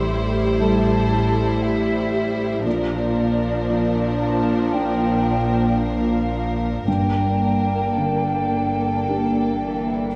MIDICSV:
0, 0, Header, 1, 9, 480
1, 0, Start_track
1, 0, Tempo, 1030928
1, 1237, Time_signature, 4, 2, 24, 8
1, 2198, Tempo, 1071429
1, 3158, Tempo, 1094891
1, 4601, End_track
2, 0, Start_track
2, 0, Title_t, "Flute"
2, 0, Program_c, 0, 73
2, 0, Note_on_c, 0, 84, 104
2, 128, Note_off_c, 0, 84, 0
2, 278, Note_on_c, 0, 81, 92
2, 756, Note_on_c, 0, 76, 85
2, 763, Note_off_c, 0, 81, 0
2, 1234, Note_off_c, 0, 76, 0
2, 1237, Note_on_c, 0, 74, 86
2, 1942, Note_off_c, 0, 74, 0
2, 1955, Note_on_c, 0, 81, 79
2, 2201, Note_on_c, 0, 79, 69
2, 2208, Note_off_c, 0, 81, 0
2, 2674, Note_on_c, 0, 77, 67
2, 2681, Note_off_c, 0, 79, 0
2, 3157, Note_off_c, 0, 77, 0
2, 3159, Note_on_c, 0, 79, 68
2, 4601, Note_off_c, 0, 79, 0
2, 4601, End_track
3, 0, Start_track
3, 0, Title_t, "Violin section"
3, 0, Program_c, 1, 48
3, 0, Note_on_c, 1, 72, 68
3, 1218, Note_off_c, 1, 72, 0
3, 1238, Note_on_c, 1, 70, 64
3, 3626, Note_off_c, 1, 70, 0
3, 3645, Note_on_c, 1, 69, 47
3, 4601, Note_off_c, 1, 69, 0
3, 4601, End_track
4, 0, Start_track
4, 0, Title_t, "Violin section"
4, 0, Program_c, 2, 48
4, 0, Note_on_c, 2, 64, 66
4, 1218, Note_off_c, 2, 64, 0
4, 1242, Note_on_c, 2, 62, 63
4, 3155, Note_off_c, 2, 62, 0
4, 3160, Note_on_c, 2, 62, 52
4, 4601, Note_off_c, 2, 62, 0
4, 4601, End_track
5, 0, Start_track
5, 0, Title_t, "French horn section"
5, 0, Program_c, 3, 60
5, 0, Note_on_c, 3, 57, 63
5, 0, Note_on_c, 3, 67, 69
5, 1217, Note_off_c, 3, 67, 0
5, 1218, Note_off_c, 3, 57, 0
5, 1241, Note_on_c, 3, 58, 59
5, 1242, Note_on_c, 3, 65, 60
5, 3089, Note_off_c, 3, 58, 0
5, 3089, Note_off_c, 3, 65, 0
5, 3165, Note_on_c, 3, 58, 53
5, 3165, Note_on_c, 3, 62, 47
5, 4601, Note_off_c, 3, 58, 0
5, 4601, Note_off_c, 3, 62, 0
5, 4601, End_track
6, 0, Start_track
6, 0, Title_t, "Felt piano"
6, 0, Program_c, 4, 0
6, 0, Control_c, 4, 64, 127
6, 0, Note_on_c, 4, 45, 57
6, 0, Note_on_c, 4, 52, 52
6, 281, Note_on_c, 4, 55, 42
6, 283, Note_on_c, 4, 64, 47
6, 284, Note_on_c, 4, 69, 53
6, 567, Note_off_c, 4, 52, 0
6, 1220, Note_off_c, 4, 45, 0
6, 1220, Note_off_c, 4, 55, 0
6, 1221, Note_off_c, 4, 64, 0
6, 1221, Note_off_c, 4, 69, 0
6, 1239, Note_on_c, 4, 46, 57
6, 1244, Control_c, 4, 64, 0
6, 1309, Control_c, 4, 64, 127
6, 1722, Note_on_c, 4, 53, 44
6, 2202, Note_on_c, 4, 58, 40
6, 2204, Note_on_c, 4, 62, 40
6, 2207, Note_on_c, 4, 65, 42
6, 2487, Note_off_c, 4, 53, 0
6, 3142, Note_off_c, 4, 46, 0
6, 3143, Note_off_c, 4, 58, 0
6, 3144, Note_off_c, 4, 62, 0
6, 3145, Note_off_c, 4, 65, 0
6, 3165, Note_on_c, 4, 43, 45
6, 3168, Control_c, 4, 64, 0
6, 3250, Control_c, 4, 64, 127
6, 3644, Note_on_c, 4, 50, 37
6, 4129, Note_on_c, 4, 58, 37
6, 4130, Note_on_c, 4, 62, 37
6, 4132, Note_on_c, 4, 67, 38
6, 4409, Note_off_c, 4, 50, 0
6, 4601, Note_off_c, 4, 43, 0
6, 4601, Note_off_c, 4, 58, 0
6, 4601, Note_off_c, 4, 62, 0
6, 4601, Note_off_c, 4, 67, 0
6, 4601, End_track
7, 0, Start_track
7, 0, Title_t, "Viola section"
7, 0, Program_c, 5, 48
7, 0, Note_on_c, 5, 55, 64
7, 1221, Note_off_c, 5, 55, 0
7, 1241, Note_on_c, 5, 53, 60
7, 3162, Note_off_c, 5, 53, 0
7, 3162, Note_on_c, 5, 58, 47
7, 4601, Note_off_c, 5, 58, 0
7, 4601, End_track
8, 0, Start_track
8, 0, Title_t, "Cello section"
8, 0, Program_c, 6, 48
8, 0, Note_on_c, 6, 45, 69
8, 1218, Note_off_c, 6, 45, 0
8, 1238, Note_on_c, 6, 46, 66
8, 3142, Note_off_c, 6, 46, 0
8, 3160, Note_on_c, 6, 43, 53
8, 3587, Note_off_c, 6, 43, 0
8, 3642, Note_on_c, 6, 43, 45
8, 4342, Note_off_c, 6, 43, 0
8, 4360, Note_on_c, 6, 52, 53
8, 4599, Note_off_c, 6, 52, 0
8, 4601, End_track
9, 0, Start_track
9, 0, Title_t, "Double bass section"
9, 0, Program_c, 7, 48
9, 0, Note_on_c, 7, 33, 68
9, 1219, Note_off_c, 7, 33, 0
9, 1241, Note_on_c, 7, 34, 56
9, 3143, Note_off_c, 7, 34, 0
9, 3162, Note_on_c, 7, 31, 51
9, 4601, Note_off_c, 7, 31, 0
9, 4601, End_track
0, 0, End_of_file